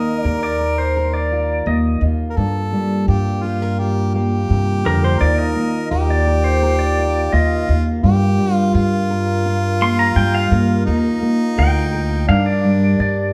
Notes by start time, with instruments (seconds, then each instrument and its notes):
Already playing: steel-string acoustic guitar D#3 A#3 A#4, harmonica A#4, pedal steel guitar D#5
0.20 pedal steel guitar D5
0.24 upright bass D#2, steel-string acoustic guitar A#4
0.43 pedal steel guitar D5
0.61 steel-string acoustic guitar A#4
0.78 pedal steel guitar C5
0.97 steel-string acoustic guitar A#4
1.14 pedal steel guitar D5
1.32 steel-string acoustic guitar F4
1.66 upright bass D#2, steel-string acoustic guitar A#3, pedal steel guitar D#5
2.01 upright bass D#2, steel-string acoustic guitar F4
2.30 harmonica A#4
2.36 upright bass G2, steel-string acoustic guitar G2, french horn section G3 A#3 F4, harmonica A4
2.72 steel-string acoustic guitar G3
3.08 upright bass G2, steel-string acoustic guitar F4, harmonica G4
3.43 harmonica F4, steel-string acoustic guitar G4
3.62 steel-string acoustic guitar A#4
3.79 steel-string acoustic guitar F4, harmonica G4
4.15 steel-string acoustic guitar A#3, harmonica G4
4.50 upright bass G2, steel-string acoustic guitar C3
4.86 upright bass F2, steel-string acoustic guitar D3, pedal steel guitar A#4
5.04 pedal steel guitar C5
5.19 upright bass D#2, steel-string acoustic guitar D#3 A#3 F4 A#4, french horn section D#3 A#3, harmonica A#4, pedal steel guitar D5
5.38 pedal steel guitar D#5
5.56 steel-string acoustic guitar A#3
5.91 upright bass D#2, harmonica G4, steel-string acoustic guitar A#4
6.10 pedal steel guitar D5
6.27 steel-string acoustic guitar A#4
6.44 pedal steel guitar C5
6.62 steel-string acoustic guitar A#4
6.79 pedal steel guitar D5
6.98 steel-string acoustic guitar F4
7.33 upright bass D#2, steel-string acoustic guitar A#3, harmonica F4, pedal steel guitar D#5
7.68 upright bass D#2, steel-string acoustic guitar F4
8.03 steel-string acoustic guitar G2, upright bass G2, french horn section G3 F4 A#4, harmonica G4
8.38 steel-string acoustic guitar G3
8.54 harmonica F4
8.74 upright bass G2, steel-string acoustic guitar F4, harmonica F4
9.10 steel-string acoustic guitar A#4
9.46 steel-string acoustic guitar F4
9.81 steel-string acoustic guitar A#3, pedal steel guitar C6
9.99 pedal steel guitar A#5
10.16 upright bass G2, steel-string acoustic guitar G3, pedal steel guitar G5
10.35 pedal steel guitar F5
10.51 upright bass G2, steel-string acoustic guitar A#3, pedal steel guitar A#4
10.86 upright bass D#2, french horn section A#3 D#4 F4, steel-string acoustic guitar A#3 F4, harmonica D#4
11.22 steel-string acoustic guitar A#3
11.58 upright bass D2, steel-string acoustic guitar A#4, pedal steel guitar G5
11.94 steel-string acoustic guitar A#4
12.28 steel-string acoustic guitar G2, upright bass G2, french horn section G3 D4 A#4, harmonica D4, pedal steel guitar F5
12.46 pedal steel guitar D5
12.64 steel-string acoustic guitar G3
12.99 upright bass G2, pedal steel guitar D5